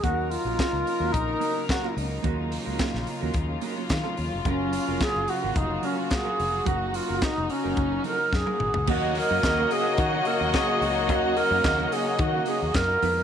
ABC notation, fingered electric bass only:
X:1
M:4/4
L:1/16
Q:1/4=108
K:Ebm
V:1 name="Fingered electric bass" clef=bass
E,,3 B,,, z D,, z E,, B,,,2 z4 D,,2 | E,,3 D,, z B,,, z E,, E,,2 z2 E, z E,, F,,, | G,,,3 F,,, z G,,, z A,,, F,,,2 z4 F,,,2 | G,,,3 G,,, z F,,, z G,,, G,,,2 z2 G,, z A,,, D,, |
E,,3 G,, E,,2 z2 E,2 z E,, z2 D,,2 | E,,3 G,, E,,2 z2 E,2 z E,, G,,2 F,,2 |]